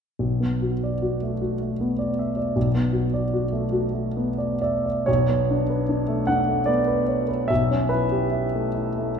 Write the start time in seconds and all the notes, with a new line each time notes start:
0.19 B1
0.40 B3
0.62 F#4
0.83 D5
1.02 F#4
1.23 A3
1.41 F#4
1.61 A3
1.80 B3
1.99 D5
2.19 E5
2.37 D5
2.56 B1
2.74 B3
2.93 F#4
3.14 D5
3.34 F#4
3.52 A3
3.72 F#4
3.93 A3
4.17 B3
4.38 D5
4.61 D5 E5
4.86 D5
5.06 B1 C#5
5.29 B3
5.50 D4
5.70 B4
5.89 D4
6.08 A3
6.27 D4 F#5
6.48 A3
6.66 B3 D5
6.87 B4
7.08 C#5
7.28 B4
7.48 B1 E5
7.71 C#4
7.89 E4 B4
8.12 G4
8.31 E4
8.54 A3
8.74 E4
8.98 A3